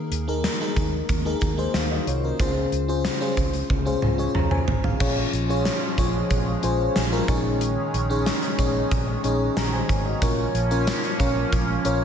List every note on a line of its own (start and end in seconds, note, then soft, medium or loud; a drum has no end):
0.00 0.40 D#3 medium
0.00 0.11 A#3 medium
0.00 0.11 D#4 medium
0.00 0.11 G#4 medium
0.00 0.12 A#4 medium
0.11 0.47 D#2 medium
0.11 closed hi-hat medium
0.28 0.50 A#3 medium
0.28 0.50 D#4 medium
0.28 0.50 G#4 medium
0.28 0.50 A#4 medium
0.44 snare loud
0.44 closed hi-hat medium
0.60 1.04 A#3 medium
0.60 1.05 D#4 medium
0.60 1.05 G#4 medium
0.60 1.05 A#4 medium
0.76 1.00 D#2 medium
0.76 kick medium
0.76 closed hi-hat medium
1.09 1.33 D#2 medium
1.09 kick medium
1.09 closed hi-hat medium
1.25 1.47 A#3 medium
1.25 1.48 D#4 medium
1.25 1.48 G#4 medium
1.25 1.48 A#4 medium
1.41 1.65 D#2 medium
1.41 kick medium
1.41 closed hi-hat medium
1.57 1.80 A#3 medium
1.57 1.74 D#4 medium
1.57 1.74 G#4 medium
1.57 1.75 C5 medium
1.74 1.98 D#2 loud
1.74 1.90 G#4 soft
1.74 1.90 F5 medium
1.74 snare loud
1.74 closed hi-hat medium
1.91 2.07 F#4 medium
1.91 2.06 D#5 medium
2.07 2.30 C2 medium
2.07 2.23 F4 medium
2.07 2.23 C#5 medium
2.07 closed hi-hat medium
2.24 2.38 C#4 soft
2.24 2.55 A#4 medium
2.39 2.63 C#2 medium
2.39 3.34 C#3 medium
2.39 2.73 C#4 medium
2.39 2.73 F4 medium
2.39 2.73 G#4 medium
2.39 2.73 C5 medium
2.39 kick loud
2.39 closed hi-hat medium
2.72 3.07 C#2 medium
2.72 closed hi-hat medium
2.88 3.10 C#4 medium
2.88 3.11 F4 medium
2.88 3.11 G#4 medium
2.88 3.11 C5 medium
3.05 snare loud
3.05 closed hi-hat medium
3.20 3.65 C#4 medium
3.20 3.65 F4 medium
3.20 3.65 G#4 medium
3.20 3.65 C5 medium
3.37 3.61 C#2 medium
3.37 kick medium
3.37 closed hi-hat medium
3.53 closed hi-hat soft
3.70 3.94 C#2 medium
3.70 kick medium
3.70 high tom medium
3.85 4.08 C#4 medium
3.85 4.08 F4 medium
3.85 4.08 G#4 medium
3.85 4.08 C5 medium
4.02 4.26 C#2 medium
4.02 mid tom medium
4.18 4.40 C#4 medium
4.18 4.41 F4 medium
4.18 4.35 G#4 medium
4.18 4.34 C#5 medium
4.35 4.59 C#2 medium
4.35 4.51 C#5 medium
4.35 4.51 A#5 medium
4.35 mid tom medium
4.51 4.83 C5 medium
4.51 4.82 G#5 medium
4.51 mid tom medium
4.68 4.91 G#1 medium
4.68 floor tom medium
4.84 4.99 G#4 medium
4.84 5.15 F5 medium
4.84 floor tom medium
5.00 5.24 A#1 loud
5.00 5.94 A#2 medium
5.00 7.26 F3 medium
5.00 7.26 G#3 medium
5.00 5.33 C#4 medium
5.00 10.18 C#4 medium
5.00 5.33 F4 medium
5.00 5.34 G#4 medium
5.00 5.34 C#5 medium
5.00 kick loud
5.00 crash medium
5.33 5.68 A#1 medium
5.33 closed hi-hat medium
5.49 5.82 C#4 medium
5.49 5.83 F4 medium
5.49 5.83 G#4 medium
5.49 5.83 C#5 medium
5.65 snare loud
5.65 closed hi-hat medium
5.98 6.21 A#1 medium
5.98 6.42 C#4 medium
5.98 6.42 F4 medium
5.98 6.43 G#4 medium
5.98 6.43 C#5 medium
5.98 kick medium
5.98 closed hi-hat medium
6.30 6.54 A#1 medium
6.30 kick medium
6.30 closed hi-hat medium
6.63 6.87 A#1 medium
6.63 6.96 C#4 medium
6.63 6.96 F4 medium
6.63 6.97 G#4 medium
6.63 6.97 C5 medium
6.63 closed hi-hat medium
6.96 7.20 A#1 medium
6.96 snare loud
6.96 closed hi-hat medium
7.12 7.27 C#4 medium
7.12 7.29 F4 medium
7.12 7.28 G#4 medium
7.12 7.29 A#4 medium
7.28 7.75 A#1 medium
7.28 8.23 A#2 medium
7.28 10.19 D#3 medium
7.28 10.19 G#3 medium
7.28 7.94 C#4 medium
7.28 7.94 D#4 medium
7.28 7.94 G#4 medium
7.28 7.94 C#5 medium
7.28 kick loud
7.28 closed hi-hat medium
7.61 closed hi-hat medium
7.94 8.29 A#1 loud
7.94 closed hi-hat medium
8.10 8.43 C#4 medium
8.10 8.43 D#4 medium
8.10 8.43 G#4 medium
8.10 8.43 C#5 medium
8.26 snare loud
8.26 closed hi-hat medium
8.42 closed hi-hat soft
8.59 8.82 A#1 medium
8.59 9.03 C#4 medium
8.59 9.03 D#4 medium
8.59 9.03 G#4 medium
8.59 9.03 C#5 medium
8.59 kick medium
8.59 closed hi-hat medium
8.91 9.15 A#1 medium
8.91 kick medium
8.91 closed hi-hat medium
9.24 9.48 A#1 loud
9.24 9.57 C#4 medium
9.24 9.57 D#4 medium
9.24 9.57 G#4 medium
9.24 9.57 C#5 medium
9.24 closed hi-hat medium
9.57 9.80 A#1 loud
9.57 9.73 C#5 soft
9.57 9.73 A#5 medium
9.57 snare loud
9.57 closed hi-hat medium
9.73 10.04 C5 medium
9.73 10.04 G#5 medium
9.89 10.13 G#1 medium
9.89 kick medium
9.89 closed hi-hat medium
10.06 10.37 F#4 medium
10.06 10.37 D#5 medium
10.22 10.46 A#1 loud
10.22 11.16 A#2 medium
10.22 12.04 F3 medium
10.22 12.04 A#3 medium
10.22 10.55 C#4 medium
10.22 12.04 C#4 medium
10.22 10.55 F4 medium
10.22 10.55 A#4 medium
10.22 10.56 C#5 medium
10.22 kick loud
10.22 closed hi-hat medium
10.54 10.90 A#1 loud
10.54 closed hi-hat medium
10.71 11.04 C#4 medium
10.71 11.04 F4 medium
10.71 11.04 A#4 medium
10.71 11.05 C#5 medium
10.71 closed hi-hat soft
10.87 snare loud
10.87 closed hi-hat medium
10.87 tambourine medium
11.04 closed hi-hat soft
11.19 11.43 A#1 medium
11.19 11.64 C#4 medium
11.19 11.64 F4 medium
11.19 11.64 A#4 medium
11.19 11.64 C#5 medium
11.19 kick medium
11.19 closed hi-hat medium
11.52 11.76 A#1 loud
11.52 kick medium
11.52 closed hi-hat medium
11.84 12.04 A#1 medium
11.84 12.04 C#4 medium
11.84 12.04 F4 medium
11.84 12.04 A#4 medium
11.84 12.04 C#5 medium
11.84 closed hi-hat medium